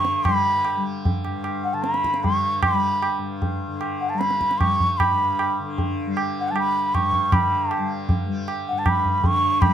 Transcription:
Already playing: G2 D3 G3 C#6
0.05 tabla te
0.24 G3 B5, tabla na, tabla ge
0.65 tabla na
0.77 G3
1.05 tabla tin, tabla ge
1.25 G2, tabla na
1.44 tabla na
1.64 F#5
1.74 D3 A5
1.83 B5, tabla te
1.94 tabla te
2.04 tabla ke
2.14 tabla te
2.23 G3 C#6, tabla tin, tabla ge
2.63 B5, tabla na, tabla ge
2.72 G3
3.02 tabla na
3.18 G2
3.42 tabla tin, tabla ge
3.68 D3
3.81 tabla na
4.01 F#5
4.09 A5
4.14 G3
4.19 B5, tabla te
4.30 tabla te
4.41 tabla ke
4.51 tabla te
4.58 C#6, tabla na, tabla ge
4.63 G3
4.80 tabla ge
4.98 B5, tabla na, tabla ge
5.11 G2
5.39 tabla na
5.60 D3
5.78 tabla tin, tabla ge
6.06 G3
6.17 tabla na
6.40 F#5
6.48 G3 A5
6.56 B5, tabla na
6.95 C#6, tabla na, tabla ge
7.00 G2
7.13 tabla ge
7.30 D3 B5, tabla na, tabla ge
7.71 A5, tabla na
7.78 G3
8.09 tabla tin, tabla ge
8.27 G3
8.48 tabla na
8.68 G2 F#5
8.78 A5
8.86 B5, tabla na, tabla ge
9.05 tabla ge
9.20 D3
9.24 C#6, tabla tin, tabla ge
9.61 B5, tabla na, tabla ge
9.66 G3

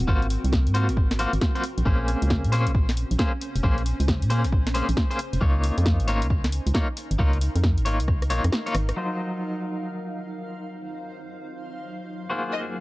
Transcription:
Already playing: C4 F#4 A#4
0.00 closed hi-hat
0.08 G#1 A#3 F4 F#4 C5, kick
0.22 closed hi-hat
0.30 open hi-hat
0.44 C2, closed hi-hat
0.52 kick, snare
0.67 G#2, closed hi-hat
0.74 A#3 F4 F#4 C5, open hi-hat
0.89 G#1, snare, closed hi-hat
0.97 kick
1.11 snare, closed hi-hat
1.19 A#3 F4 F#4 C5, open hi-hat
1.33 G#1, closed hi-hat
1.41 kick, snare
1.55 A#3 F4 F#4 C5, closed hi-hat
1.63 C#4, open hi-hat
1.78 A#1 C5, closed hi-hat
1.85 A#1 A#3 C#4 G#4 C5, kick
2.08 open hi-hat
2.22 C#2, closed hi-hat
2.30 kick, snare
2.35 G#5
2.44 A#2, closed hi-hat
2.52 A#3 C#4 G#4 C5, open hi-hat
2.67 A#1, closed hi-hat
2.75 kick
2.89 snare, closed hi-hat
2.97 open hi-hat
3.11 A#1, closed hi-hat
3.19 A#3 C#4 G#4 C5, kick, snare
3.41 open hi-hat
3.56 F1, closed hi-hat
3.63 A#1 A#3 C#4 G#4 C5, kick
3.78 closed hi-hat
3.86 open hi-hat
4.00 C#2, closed hi-hat
4.08 kick, snare
4.22 A#2, closed hi-hat
4.30 A#3 C#4 G#4 C5, open hi-hat
4.44 A#1, snare, closed hi-hat
4.52 kick
4.67 snare, closed hi-hat
4.74 A#3 C#4 G#4 C5, open hi-hat
4.89 A#1, closed hi-hat
4.97 kick, snare
5.11 A#3 C#4 G#4 C5, closed hi-hat
5.19 open hi-hat
5.33 F1, closed hi-hat
5.41 C#2 A#3 D#4 F4 C#5, kick
5.61 A#4, open hi-hat
5.78 F2, closed hi-hat
5.86 kick, snare
6.00 G#1, closed hi-hat
6.08 A#3 D#4 F4 C#5, open hi-hat
6.22 C#2 F5, closed hi-hat
6.30 kick
6.44 snare, closed hi-hat
6.52 open hi-hat
6.67 C#2, closed hi-hat
6.74 A#3 D#4 F4 C#5, kick, snare
6.97 open hi-hat
7.11 G#1, closed hi-hat
7.19 C#2 A#3 D#4 F4 C#5, kick
7.33 closed hi-hat
7.41 open hi-hat
7.56 F2, closed hi-hat
7.64 kick, snare
7.78 G#1, closed hi-hat
7.85 A#3 D#4 F4 C#5, open hi-hat
8.00 C#2, closed hi-hat
8.08 kick, cross-stick
8.22 cross-stick, closed hi-hat
8.30 A#1 A#3 D#4 F4 C#5, open hi-hat
8.44 F2, cross-stick, closed hi-hat
8.53 cross-stick, snare
8.66 A#3 D#4 F4 C#5, closed hi-hat
8.75 G#1, cross-stick, open hi-hat
8.89 cross-stick, closed hi-hat
8.96 F#3 D#4 F4 C5
9.32 F#3
9.59 C5
12.30 A#3 C4 F4 F#4 G#4 C5
12.52 D#5
12.60 A#4

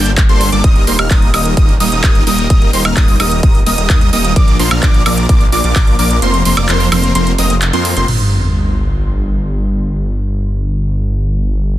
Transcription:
Already playing: G1 G3 A#3 D4 A4 G5 G6
0.06 closed hi-hat
0.17 kick, clap, closed hi-hat
0.29 G1 G3 A#3 D4 A4 C5 C6, closed hi-hat
0.41 open hi-hat
0.52 G1 G3 A#3 D4 A4 D5 D6, closed hi-hat
0.64 D#1 G3 A#3 D#4 A#4 D#5 D#6, kick, closed hi-hat
0.76 closed hi-hat
0.87 D#1 G3 A#3 D#4 A#4 C5 C6, open hi-hat
0.99 D#1 G3 A#3 D#4 A#4 F5 F6, closed hi-hat, high woodblock
1.11 D#1 G3 A#3 D#4 A#4 D#5 D#6, kick, clap, closed hi-hat
1.22 closed hi-hat
1.34 D#1 G3 A#3 D#4 A#4 D#5 D#6, open hi-hat, high woodblock
1.46 closed hi-hat
1.57 D#1 D#4 A#4 D#5 D#6, kick, closed hi-hat
1.69 closed hi-hat
1.80 D#1 G3 A#3 D#4 A#4 D#5 D#6, open hi-hat
1.92 D#1 G3 A#3 D#4 A#4 D#5 D#6, closed hi-hat
2.04 D#1 D#6, kick, clap, closed hi-hat, high woodblock
2.15 closed hi-hat
2.27 D#1 G3 A#3 D#4 A#4 D#5 D#6, open hi-hat
2.38 closed hi-hat
2.50 D#1 D#6, kick, closed hi-hat
2.62 closed hi-hat
2.73 D#1 G3 A#3 D#4 A#4 C5 C6, open hi-hat
2.85 D#1 G3 A#3 D#4 A#4 F5 F6, closed hi-hat, high woodblock
2.97 D#1 G3 A#3 D#4 A#4 D#5 D#6, kick, clap, closed hi-hat
3.08 open hi-hat
3.20 D#1 G3 A#3 D#4 A#4 D#5 D#6, open hi-hat, high woodblock
3.31 closed hi-hat
3.43 D#1 G3 D#6, kick, closed hi-hat
3.55 closed hi-hat
3.66 D#1 G3 A#3 D#4 A#4 D#5 D#6, open hi-hat
3.78 D#1 G3 A#3 D#4 A#4 D#5 D#6, closed hi-hat
3.90 D#2 G3 A#3 D#4 D#5 D#6, kick, clap, closed hi-hat
4.01 closed hi-hat
4.13 D#1 G3 A#3 D#4 A#4 D#5 D#6, open hi-hat
4.25 closed hi-hat
4.36 A#1 F3 A#3 D4 A#4 D5 D6, kick, closed hi-hat
4.48 closed hi-hat
4.59 A#1 F3 A#3 D4 A#4 C5 C6, open hi-hat
4.71 A#1 F3 A#3 D4 A#4 F5 F6, closed hi-hat, high woodblock
4.83 A#1 F3 A#3 D4 A#4 D5 D6, kick, clap, closed hi-hat
4.94 closed hi-hat
5.06 A#1 F3 A#3 D4 A#4 D5 D6, open hi-hat, high woodblock
5.18 closed hi-hat
5.29 A#1 A#3 D4 D5 D6, kick, closed hi-hat
5.41 closed hi-hat
5.52 A#1 F3 A#3 D4 A#4 D5 D6, open hi-hat
5.64 A#1 F3 A#3 D4 A#4 D5 D6, closed hi-hat
5.76 A#1 F3 A#3 D4 A#4 D5 D6, kick, clap, closed hi-hat, high woodblock
5.87 closed hi-hat
5.99 A#1 F3 A#3 D4 A#4 D5 D6, open hi-hat
6.11 closed hi-hat
6.22 F1 F3 A#3 C4 A#4 C5 C6, closed hi-hat
6.34 closed hi-hat
6.45 F1 F3 A#3 C4 A#4 C5 C6, open hi-hat
6.57 F1 F3 A#3 C4 A#4 D5 D6, closed hi-hat, high woodblock
6.69 F1 F3 A#3 C4 A#4 C5 C6, clap, closed hi-hat
6.80 open hi-hat
6.92 F1 F3 A#3 C4 A#4 C5 C6, open hi-hat, high woodblock
7.04 closed hi-hat
7.15 F1 F3 A#3 C4 A#4 C5 C6, closed hi-hat
7.27 closed hi-hat
7.38 F1 F3 A#3 C4 A#4 D#5 D#6, open hi-hat
7.50 closed hi-hat
7.62 clap, closed hi-hat
7.73 F2 F3 A#3 C4 A#4 C5 C6, closed hi-hat
7.85 open hi-hat
7.96 F1 F3 A#3 C4 A#4 C5 C6, closed hi-hat
8.08 G1, crash, sub drop

